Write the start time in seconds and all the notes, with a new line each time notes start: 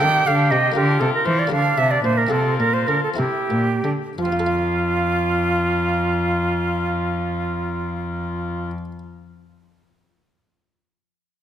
Already playing: G5
0.00 D#3 C4 F4 G4 A4
0.27 D3 F5
0.51 C3 D#5
0.72 A#3 F4 G4 A#4
0.76 D3 F4
1.00 C3 A4
1.14 A#4
1.26 E3 C5
1.39 D5
1.47 A#3 G4 A#4
1.52 D3 D4 F5
1.78 C3 E5
1.91 D5
2.03 A#2 C5
2.17 A#4
2.27 C4 F4 A4
2.31 C3 F4
2.59 A#2 A#4
2.74 C5
2.87 D3 A#4
3.03 A4
3.14 C4 E4 G4 A#4
3.18 C3 E4
3.50 A#2
3.83 D3
4.18 F2 F3 F4
4.25 C4
4.32 F4
4.39 A4
4.46 F5